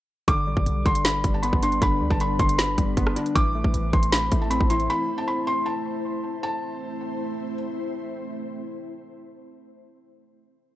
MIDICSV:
0, 0, Header, 1, 6, 480
1, 0, Start_track
1, 0, Key_signature, 0, "minor"
1, 0, Tempo, 384615
1, 348, Time_signature, 4, 2, 24, 8
1, 13424, End_track
2, 0, Start_track
2, 0, Title_t, "Felt piano"
2, 0, Program_c, 0, 0
2, 349, Note_on_c, 0, 86, 112
2, 1025, Note_off_c, 0, 86, 0
2, 1075, Note_on_c, 0, 84, 88
2, 1276, Note_off_c, 0, 84, 0
2, 1311, Note_on_c, 0, 83, 94
2, 1648, Note_off_c, 0, 83, 0
2, 1674, Note_on_c, 0, 81, 65
2, 1774, Note_off_c, 0, 81, 0
2, 1780, Note_on_c, 0, 83, 77
2, 1988, Note_off_c, 0, 83, 0
2, 2033, Note_on_c, 0, 84, 74
2, 2235, Note_off_c, 0, 84, 0
2, 2279, Note_on_c, 0, 83, 93
2, 2612, Note_off_c, 0, 83, 0
2, 2631, Note_on_c, 0, 81, 83
2, 2732, Note_off_c, 0, 81, 0
2, 2758, Note_on_c, 0, 83, 76
2, 2958, Note_off_c, 0, 83, 0
2, 2990, Note_on_c, 0, 84, 80
2, 3193, Note_off_c, 0, 84, 0
2, 3224, Note_on_c, 0, 83, 83
2, 4136, Note_off_c, 0, 83, 0
2, 4187, Note_on_c, 0, 86, 110
2, 4864, Note_off_c, 0, 86, 0
2, 4908, Note_on_c, 0, 84, 79
2, 5112, Note_off_c, 0, 84, 0
2, 5146, Note_on_c, 0, 83, 96
2, 5485, Note_off_c, 0, 83, 0
2, 5511, Note_on_c, 0, 81, 68
2, 5612, Note_off_c, 0, 81, 0
2, 5622, Note_on_c, 0, 83, 84
2, 5829, Note_off_c, 0, 83, 0
2, 5864, Note_on_c, 0, 84, 77
2, 6070, Note_off_c, 0, 84, 0
2, 6114, Note_on_c, 0, 83, 97
2, 6449, Note_off_c, 0, 83, 0
2, 6462, Note_on_c, 0, 81, 83
2, 6567, Note_off_c, 0, 81, 0
2, 6585, Note_on_c, 0, 83, 80
2, 6790, Note_off_c, 0, 83, 0
2, 6828, Note_on_c, 0, 84, 85
2, 7032, Note_off_c, 0, 84, 0
2, 7060, Note_on_c, 0, 81, 81
2, 7974, Note_off_c, 0, 81, 0
2, 8026, Note_on_c, 0, 81, 90
2, 9417, Note_off_c, 0, 81, 0
2, 13424, End_track
3, 0, Start_track
3, 0, Title_t, "Ambient pad"
3, 0, Program_c, 1, 92
3, 348, Note_on_c, 1, 59, 79
3, 348, Note_on_c, 1, 71, 95
3, 349, Note_on_c, 1, 55, 83
3, 349, Note_on_c, 1, 62, 78
3, 4149, Note_off_c, 1, 59, 0
3, 4149, Note_off_c, 1, 71, 0
3, 4150, Note_off_c, 1, 55, 0
3, 4150, Note_off_c, 1, 62, 0
3, 4188, Note_on_c, 1, 60, 78
3, 4188, Note_on_c, 1, 72, 94
3, 4189, Note_on_c, 1, 57, 83
3, 4189, Note_on_c, 1, 64, 81
3, 7990, Note_off_c, 1, 57, 0
3, 7990, Note_off_c, 1, 60, 0
3, 7990, Note_off_c, 1, 64, 0
3, 7990, Note_off_c, 1, 72, 0
3, 8028, Note_on_c, 1, 64, 77
3, 8028, Note_on_c, 1, 72, 95
3, 8029, Note_on_c, 1, 57, 84
3, 8029, Note_on_c, 1, 60, 75
3, 11998, Note_off_c, 1, 64, 0
3, 11998, Note_off_c, 1, 72, 0
3, 11999, Note_off_c, 1, 57, 0
3, 11999, Note_off_c, 1, 60, 0
3, 13424, End_track
4, 0, Start_track
4, 0, Title_t, "Synth keys"
4, 0, Program_c, 2, 88
4, 346, Note_on_c, 2, 50, 91
4, 560, Control_c, 2, 64, 127
4, 585, Note_on_c, 2, 55, 80
4, 814, Note_off_c, 2, 50, 0
4, 829, Note_on_c, 2, 50, 73
4, 1054, Note_off_c, 2, 50, 0
4, 1069, Note_on_c, 2, 50, 100
4, 1293, Note_off_c, 2, 50, 0
4, 1308, Note_on_c, 2, 50, 78
4, 1536, Note_off_c, 2, 55, 0
4, 1551, Note_on_c, 2, 55, 77
4, 1792, Note_on_c, 2, 59, 96
4, 2030, Note_on_c, 2, 62, 80
4, 2254, Note_off_c, 2, 50, 0
4, 2269, Note_on_c, 2, 50, 92
4, 2492, Note_off_c, 2, 55, 0
4, 2507, Note_on_c, 2, 55, 77
4, 2729, Note_off_c, 2, 50, 0
4, 2744, Note_on_c, 2, 50, 73
4, 2966, Note_off_c, 2, 50, 0
4, 2981, Note_on_c, 2, 50, 99
4, 2990, Note_off_c, 2, 59, 0
4, 3211, Note_off_c, 2, 50, 0
4, 3226, Note_on_c, 2, 50, 74
4, 3229, Note_off_c, 2, 62, 0
4, 3450, Note_off_c, 2, 55, 0
4, 3465, Note_on_c, 2, 55, 78
4, 3707, Note_on_c, 2, 59, 93
4, 3944, Note_on_c, 2, 62, 88
4, 4186, Note_off_c, 2, 62, 0
4, 4187, Note_off_c, 2, 50, 0
4, 4187, Note_off_c, 2, 55, 0
4, 4187, Note_off_c, 2, 59, 0
4, 4187, Note_on_c, 2, 52, 94
4, 4204, Control_c, 2, 64, 0
4, 4391, Control_c, 2, 64, 127
4, 4428, Note_on_c, 2, 57, 78
4, 4652, Note_off_c, 2, 52, 0
4, 4667, Note_on_c, 2, 52, 72
4, 4892, Note_off_c, 2, 52, 0
4, 4907, Note_on_c, 2, 52, 94
4, 5137, Note_off_c, 2, 52, 0
4, 5152, Note_on_c, 2, 52, 77
4, 5372, Note_off_c, 2, 57, 0
4, 5387, Note_on_c, 2, 57, 75
4, 5625, Note_on_c, 2, 60, 92
4, 5873, Note_on_c, 2, 64, 81
4, 6121, Control_c, 2, 64, 0
4, 6350, Note_off_c, 2, 52, 0
4, 6587, Note_off_c, 2, 57, 0
4, 6826, Note_off_c, 2, 60, 0
4, 7070, Note_off_c, 2, 64, 0
4, 13424, End_track
5, 0, Start_track
5, 0, Title_t, "808-style bass"
5, 0, Program_c, 3, 38
5, 348, Note_on_c, 3, 31, 107
5, 588, Note_on_c, 3, 33, 101
5, 607, Note_off_c, 3, 31, 0
5, 702, Note_off_c, 3, 33, 0
5, 707, Note_on_c, 3, 31, 101
5, 823, Note_off_c, 3, 31, 0
5, 829, Note_on_c, 3, 35, 107
5, 1059, Note_off_c, 3, 35, 0
5, 1068, Note_on_c, 3, 31, 104
5, 1529, Note_off_c, 3, 31, 0
5, 1549, Note_on_c, 3, 31, 104
5, 1894, Note_off_c, 3, 31, 0
5, 1908, Note_on_c, 3, 31, 105
5, 2253, Note_off_c, 3, 31, 0
5, 2268, Note_on_c, 3, 31, 111
5, 2508, Note_on_c, 3, 38, 104
5, 2527, Note_off_c, 3, 31, 0
5, 2622, Note_off_c, 3, 38, 0
5, 2627, Note_on_c, 3, 31, 100
5, 2973, Note_off_c, 3, 31, 0
5, 2988, Note_on_c, 3, 31, 109
5, 3449, Note_off_c, 3, 31, 0
5, 3469, Note_on_c, 3, 31, 105
5, 3699, Note_off_c, 3, 31, 0
5, 3708, Note_on_c, 3, 31, 106
5, 3938, Note_off_c, 3, 31, 0
5, 4187, Note_on_c, 3, 33, 110
5, 4533, Note_off_c, 3, 33, 0
5, 4547, Note_on_c, 3, 33, 100
5, 4663, Note_off_c, 3, 33, 0
5, 4669, Note_on_c, 3, 33, 111
5, 4899, Note_off_c, 3, 33, 0
5, 4908, Note_on_c, 3, 33, 106
5, 5369, Note_off_c, 3, 33, 0
5, 5389, Note_on_c, 3, 33, 106
5, 5734, Note_off_c, 3, 33, 0
5, 5748, Note_on_c, 3, 33, 105
5, 6093, Note_off_c, 3, 33, 0
5, 13424, End_track
6, 0, Start_track
6, 0, Title_t, "Drums"
6, 348, Note_on_c, 9, 36, 107
6, 348, Note_on_c, 9, 42, 79
6, 472, Note_off_c, 9, 42, 0
6, 473, Note_off_c, 9, 36, 0
6, 707, Note_on_c, 9, 36, 89
6, 828, Note_on_c, 9, 42, 72
6, 832, Note_off_c, 9, 36, 0
6, 953, Note_off_c, 9, 42, 0
6, 1068, Note_on_c, 9, 36, 100
6, 1068, Note_on_c, 9, 42, 47
6, 1188, Note_off_c, 9, 42, 0
6, 1188, Note_on_c, 9, 42, 80
6, 1193, Note_off_c, 9, 36, 0
6, 1307, Note_off_c, 9, 42, 0
6, 1307, Note_on_c, 9, 42, 86
6, 1308, Note_on_c, 9, 38, 121
6, 1432, Note_off_c, 9, 42, 0
6, 1433, Note_off_c, 9, 38, 0
6, 1547, Note_on_c, 9, 42, 79
6, 1549, Note_on_c, 9, 36, 99
6, 1672, Note_off_c, 9, 42, 0
6, 1674, Note_off_c, 9, 36, 0
6, 1788, Note_on_c, 9, 42, 83
6, 1908, Note_on_c, 9, 36, 98
6, 1912, Note_off_c, 9, 42, 0
6, 2028, Note_on_c, 9, 42, 81
6, 2033, Note_off_c, 9, 36, 0
6, 2149, Note_off_c, 9, 42, 0
6, 2149, Note_on_c, 9, 42, 45
6, 2268, Note_off_c, 9, 42, 0
6, 2268, Note_on_c, 9, 36, 111
6, 2268, Note_on_c, 9, 42, 77
6, 2393, Note_off_c, 9, 36, 0
6, 2393, Note_off_c, 9, 42, 0
6, 2627, Note_on_c, 9, 36, 86
6, 2748, Note_on_c, 9, 42, 74
6, 2752, Note_off_c, 9, 36, 0
6, 2873, Note_off_c, 9, 42, 0
6, 2986, Note_on_c, 9, 46, 57
6, 2988, Note_on_c, 9, 36, 101
6, 2988, Note_on_c, 9, 42, 48
6, 3108, Note_off_c, 9, 42, 0
6, 3108, Note_on_c, 9, 42, 80
6, 3111, Note_off_c, 9, 46, 0
6, 3113, Note_off_c, 9, 36, 0
6, 3229, Note_off_c, 9, 42, 0
6, 3229, Note_on_c, 9, 42, 84
6, 3230, Note_on_c, 9, 38, 127
6, 3354, Note_off_c, 9, 42, 0
6, 3355, Note_off_c, 9, 38, 0
6, 3468, Note_on_c, 9, 42, 81
6, 3469, Note_on_c, 9, 36, 98
6, 3593, Note_off_c, 9, 42, 0
6, 3594, Note_off_c, 9, 36, 0
6, 3707, Note_on_c, 9, 36, 96
6, 3708, Note_on_c, 9, 42, 89
6, 3827, Note_on_c, 9, 37, 97
6, 3832, Note_off_c, 9, 36, 0
6, 3833, Note_off_c, 9, 42, 0
6, 3948, Note_on_c, 9, 42, 80
6, 3952, Note_off_c, 9, 37, 0
6, 4068, Note_off_c, 9, 42, 0
6, 4068, Note_on_c, 9, 42, 47
6, 4188, Note_off_c, 9, 42, 0
6, 4188, Note_on_c, 9, 36, 110
6, 4188, Note_on_c, 9, 42, 83
6, 4312, Note_off_c, 9, 36, 0
6, 4313, Note_off_c, 9, 42, 0
6, 4547, Note_on_c, 9, 36, 85
6, 4667, Note_on_c, 9, 42, 75
6, 4672, Note_off_c, 9, 36, 0
6, 4792, Note_off_c, 9, 42, 0
6, 4907, Note_on_c, 9, 42, 49
6, 4908, Note_on_c, 9, 36, 104
6, 5027, Note_off_c, 9, 42, 0
6, 5027, Note_on_c, 9, 42, 77
6, 5033, Note_off_c, 9, 36, 0
6, 5147, Note_off_c, 9, 42, 0
6, 5147, Note_on_c, 9, 42, 83
6, 5148, Note_on_c, 9, 38, 126
6, 5272, Note_off_c, 9, 42, 0
6, 5273, Note_off_c, 9, 38, 0
6, 5386, Note_on_c, 9, 42, 79
6, 5389, Note_on_c, 9, 36, 101
6, 5511, Note_off_c, 9, 42, 0
6, 5513, Note_off_c, 9, 36, 0
6, 5626, Note_on_c, 9, 42, 89
6, 5748, Note_on_c, 9, 36, 95
6, 5751, Note_off_c, 9, 42, 0
6, 5866, Note_on_c, 9, 42, 78
6, 5872, Note_off_c, 9, 36, 0
6, 5987, Note_off_c, 9, 42, 0
6, 5987, Note_on_c, 9, 42, 45
6, 6112, Note_off_c, 9, 42, 0
6, 13424, End_track
0, 0, End_of_file